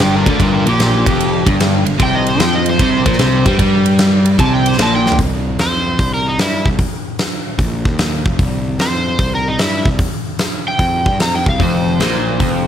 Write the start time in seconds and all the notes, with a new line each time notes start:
0.00 G1 G2 D5 G5, snare, ride
0.16 A#4 D5
0.26 D2 D3 A#4 D5, kick, ride
0.40 G1 G2 F4 A#4, kick, ride
0.54 F4 A#4
0.66 A#1 A#2 G4, ride
0.80 snare, ride
1.06 F1 F2, kick, ride
1.20 ride
1.46 G1 G2, kick, ride
1.60 snare, ride
1.86 G1 G2, ride
2.00 C2 C3 G5, kick, ride
2.15 D#5
2.27 C5, ride
2.40 F2 F3 G5, snare, ride
2.55 D#5
2.66 ride
2.70 C5
2.79 C2 C3 C5, kick, ride
3.06 A#1 A#2, kick, ride
3.13 snare
3.19 C2 C3, snare, ride
3.45 G2 G3, kick, ride
3.59 G2 G3, kick, ride
3.86 ride
3.99 snare, ride
4.26 ride
4.38 C2 C3 A5, kick, ride
4.54 G5
4.66 C5, ride
4.73 snare
4.78 A#1 A#2, snare, ride
4.82 A5
4.95 G5
5.06 snare
5.12 floor tom
5.19 C2, kick, open hi-hat
5.59 F2 C5, snare, open hi-hat
5.99 C2, kick, open hi-hat
6.14 A#4
6.28 D#4
6.38 G2 E4, snare, open hi-hat
6.65 C2, kick
6.79 kick, open hi-hat
7.19 snare, open hi-hat
7.58 A#1, kick, open hi-hat
7.85 D#2, kick
7.99 snare, open hi-hat
8.26 F1, kick
8.39 C2, kick, open hi-hat
8.78 F2 C5, snare, open hi-hat
9.19 C2, kick, open hi-hat
9.35 A#4
9.48 D#4
9.58 G2 E4, snare, open hi-hat
9.85 C2, kick
9.99 kick, open hi-hat
10.39 snare, open hi-hat
10.68 G5
10.79 F2, kick, open hi-hat
11.06 G2, kick
11.20 F2 A#5, snare, open hi-hat
11.35 G5
11.46 C2 F5, kick
11.59 F1 F2 C5, kick, open hi-hat
12.00 A#1 A#2, snare, open hi-hat
12.40 F1 F2, kick, open hi-hat